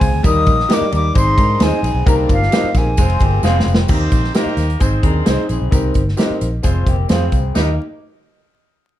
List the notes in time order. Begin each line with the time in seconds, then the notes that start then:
Already playing: C4 G#4 G#5
0.01 C#2, kick, open hi-hat, ride, tambourine
0.13 D2
0.23 D#2 G3 A#3 D#4 G4 A#4 D#5 D#6, kick, hi-hat pedal, ride, tambourine
0.46 A#1, kick, ride, tambourine
0.60 snare
0.69 G3 A#3 D#4 G4 A#4 D5 D#5, snare, ride, tambourine
0.73 D6
0.81 muted fingered electric bass stroke
0.91 D#2 G3 A#3 D#4 G4 A#4 D5, ride, tambourine
0.96 D6
1.14 G#1 G#3 C4 D#4 G#4 C5 D#5 C6, kick, ride, tambourine
1.38 G#2 D4 A#4, kick, ride, tambourine
1.58 D#2 G#3 C4 D#4 G#4 C5 D#5, snare, ride
1.62 D#4 G#5, tambourine
1.83 A#1 C4 G#4, ride, tambourine
1.95 B1
2.04 C2 A#3 C4 D4 D#4 G4 A#4 D5, kick, ride, tambourine
2.09 A#5
2.29 G1 F4 F5, kick, ride, tambourine
2.42 snare
2.51 A#3 C4 D#4 G4 A#4 C5 D#5, snare, ride, tambourine
2.64 muted fingered electric bass stroke
2.74 A#1 A#3 C4 D#4 G4 G#4 A#4 G#5, kick, snare, ride, tambourine
2.97 F1 G#3 C4 F4 G#4 C5, kick, ride, tambourine
3.09 ride
3.20 G1 A#3 G4, kick, ride, tambourine
3.43 F1 G#3 C4 F4 G#4 C5 F5, snare, tambourine
3.60 snare
3.66 F1, tambourine
3.75 snare
3.88 D#2 A#3 C4 D#4 G4 A#4 C5, kick, crash, tambourine
4.12 A#1, kick, closed hi-hat, tambourine
4.24 snare
4.34 A#3 D#4 G4 A#4 C5 D#5, snare, closed hi-hat, tambourine
4.46 muted fingered electric bass stroke
4.57 D#2, snare, closed hi-hat, tambourine
4.70 closed hi-hat
4.80 G#1 C4 D#4 G#4 C5, kick, closed hi-hat, tambourine
5.03 D#2 C4 D4 D#4 G#4 A#4 C5, kick, closed hi-hat, tambourine
5.25 C2 C4 D#4 G#4 C5 D#5, snare, closed hi-hat, tambourine
5.49 A#1 C4 G#4, closed hi-hat, tambourine
5.62 B1
5.71 C2 C4 D#4 G4 A#4, kick, closed hi-hat, tambourine
5.94 G1, kick, closed hi-hat, tambourine
6.08 snare
6.17 C4 D#4 G4 A#4 D#5, snare, closed hi-hat, tambourine
6.30 muted fingered electric bass stroke
6.41 A#1, closed hi-hat, tambourine
6.63 F1 G#3 C4 F4 G#4 C5, kick, closed hi-hat, tambourine
6.87 F1 A#3 G4, kick, closed hi-hat, tambourine
7.09 F2 C4 F4 G#4 C5 F5, snare, closed hi-hat, tambourine
7.32 C2, kick, closed hi-hat, tambourine
7.55 D#2 G3 A#3 D#4 G4 A#4 D#5, snare, tambourine, splash